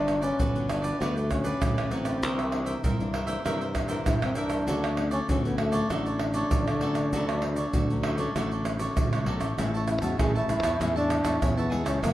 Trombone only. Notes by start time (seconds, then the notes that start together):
Already playing: D4
0.23 C#4
0.70 D4
1.02 B3
1.18 A3
1.31 C#4
1.92 C4
4.07 E4
4.23 C4
4.37 D4
5.12 C#4
5.29 C#4
5.45 B3
5.59 A3
5.90 D4
9.88 E4
10.02 F#4
10.20 G#4
10.36 E4
10.49 E4
10.97 D4
11.42 C#4
11.58 B3
11.86 C#4
12.04 A#3